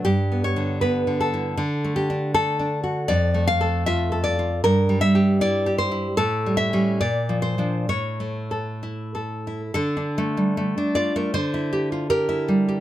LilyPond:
\new Staff \with { instrumentName = "Nylon-string guitar" } { \time 2/4 \key d \major \tempo 4 = 78 << { g'8 cis''8 b'8 a'8~ | a'8 g'8 a'4 | \key d \minor d''8 f''8 e''8 d''8 | bes'8 e''8 d''8 c''8 |
a'8 e''8 d''8 c''8 | cis''4. r8 | a'4. d''16 bes'16 | c''4 bes'4 | } \\ { \tuplet 3/2 { g,8 b8 d8 b8 d8 e'8 } | \tuplet 3/2 { d8 a8 d'8 a8 d'8 fis'8 } | \tuplet 3/2 { f,8 a8 a'8 f'8 a'8 f'8 } | \tuplet 3/2 { g,8 g8 g'8 e'8 g'8 e'8 } |
\tuplet 3/2 { a,8 g8 <g cis'>8 bes,8 f8 <f d'>8 } | \tuplet 3/2 { a,8 a8 a'8 e'8 a'8 e'8 } | d16 d'16 a16 g16 a16 d'16 f'16 a16 | d16 e'16 g'16 f'16 g'16 e'16 g16 g'16 | } >> }